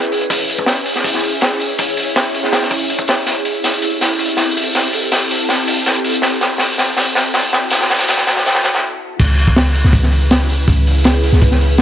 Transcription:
Already playing: C#4 E4 G#4 B4
0.02 closed hi-hat
0.12 open hi-hat
0.21 closed hi-hat
0.30 C#5, kick, open hi-hat
0.49 open hi-hat
0.59 kick
0.66 snare, open hi-hat
0.86 open hi-hat
0.96 snare
1.04 kick, open hi-hat
1.14 snare
1.23 open hi-hat
1.41 snare, open hi-hat
1.52 snare
1.60 open hi-hat
1.79 kick, open hi-hat
1.97 open hi-hat
2.16 snare, open hi-hat
2.34 open hi-hat
2.44 snare
2.53 snare, open hi-hat
2.62 snare
2.71 kick, open hi-hat
2.90 open hi-hat
2.99 kick
3.08 snare, open hi-hat
3.26 C4 G4 A4, snare, open hi-hat
3.45 open hi-hat
3.64 snare, open hi-hat
3.82 open hi-hat
4.01 snare, open hi-hat
4.19 open hi-hat
4.37 snare, open hi-hat
4.57 open hi-hat
4.75 snare, open hi-hat
4.93 open hi-hat
5.12 snare, open hi-hat
5.31 open hi-hat
5.49 snare, open hi-hat
5.68 open hi-hat
5.86 snare, open hi-hat
5.95 closed hi-hat
6.05 open hi-hat
6.14 closed hi-hat
6.22 F#4, snare, open hi-hat
6.41 snare, open hi-hat
6.58 snare, open hi-hat
6.78 snare, open hi-hat
6.97 snare, open hi-hat
7.15 snare, open hi-hat
7.34 snare, open hi-hat
7.53 snare
7.70 snare, open hi-hat
7.81 snare
7.90 snare, open hi-hat
7.99 snare, open hi-hat
8.08 snare, open hi-hat
8.17 snare
8.27 snare, open hi-hat
8.37 snare
8.46 snare, open hi-hat
8.55 snare
8.64 snare, open hi-hat
8.75 snare
9.19 C#2 C#4 E4 G#4 B4, kick, open hi-hat, crash
9.39 open hi-hat
9.48 kick
9.56 snare, open hi-hat
9.74 open hi-hat
9.85 C#2, snare
9.93 kick, open hi-hat
10.03 snare
10.12 open hi-hat
10.31 snare, open hi-hat
10.40 snare
10.49 open hi-hat
10.68 C#2, kick, open hi-hat
10.87 open hi-hat
11.04 snare, open hi-hat
11.24 open hi-hat
11.33 C#2, snare
11.41 kick, open hi-hat
11.51 snare
11.61 open hi-hat
11.78 snare, open hi-hat

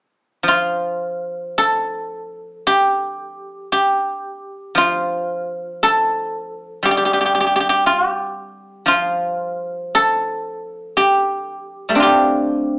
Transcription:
0.43 F3
0.48 F4
1.58 A4
2.67 G4
3.72 G4
4.75 F3 F4
5.83 A4
6.83 G3 G4
6.91 G4
6.97 G4
7.05 G4
7.13 G4
7.21 G4
7.25 G4
7.35 G4
7.40 G4
7.46 G4
7.56 G4
7.60 G4
7.69 G4
7.86 F4
8.08 G4
8.86 F3 F4
9.95 A4
10.97 G4
11.89 G3 A3
11.95 C4 D4
12.00 F4 G4

